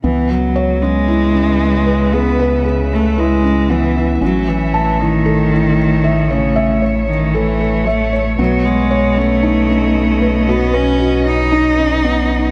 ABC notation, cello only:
X:1
M:4/4
L:1/16
Q:1/4=115
K:C#m
V:1 name="Cello" clef=bass
E,2 F,4 G,8- G,2 | B,4 z2 A,2 G,4 E,3 z | F,2 E,4 D,8- D,2 | C,4 z2 D,2 E,4 A,3 z |
F,2 G,4 A,8- A,2 | B,2 C4 D8- D2 |]